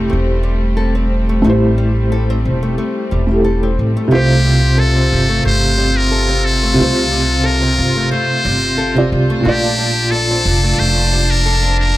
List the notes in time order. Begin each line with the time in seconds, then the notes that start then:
Already playing: G3 A3 C4 E4 G4 C5
0.10 E1 A3
0.43 G3
0.77 A4
0.95 C4
1.29 A3
1.42 A1 A3 E4
1.47 G4 C5
1.78 G3
2.12 A4
2.30 C4
2.45 E1
2.63 A3
2.78 A3
3.11 E1 G3
3.27 A3 E4
3.31 G4 A4
3.44 A4
3.63 C4
3.79 A1
3.97 A3
4.08 C3 A3
4.12 C2 C3 F4 G4 C5
4.45 G3
4.78 A4
4.96 C4
5.13 G1
5.29 A3
5.45 G1 A3 C5
5.78 G3
5.97 A#4
6.12 A4
6.29 C4
6.45 A4
6.63 A3
6.74 C3 A3
6.79 C2 F4 C5
7.11 G3
7.44 A4 A#4
7.62 C4
7.79 G1
7.96 A3
8.11 A3 C5
8.45 G1 G3
8.78 A4
8.95 C3 C4 F4 D5
9.12 C2
9.30 A3
9.41 A#2 A3 D4 A5
9.45 A#1 F4 G4 D5
9.78 G3
10.11 A4
10.31 C4
10.45 F1
10.63 A3
10.78 F1 A3 C5
11.13 G3
11.30 A#4
11.46 A4
11.63 C4
11.80 A#4